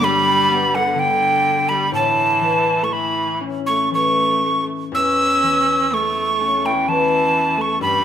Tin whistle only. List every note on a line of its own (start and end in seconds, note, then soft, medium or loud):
0.04 0.76 B5 loud
0.75 1.01 F#5 medium
0.99 1.70 G5 medium
1.69 1.93 B5 medium
1.94 2.85 A5 medium
2.84 2.94 C#6 medium
2.93 3.39 B5 medium
3.66 3.90 C#6 medium
3.94 4.65 C#6 medium
4.95 5.95 E6 loud
5.94 6.67 C#6 medium
6.66 6.90 G5 medium
6.89 7.63 A5 medium
7.61 7.81 C#6 medium
7.82 8.04 B5 medium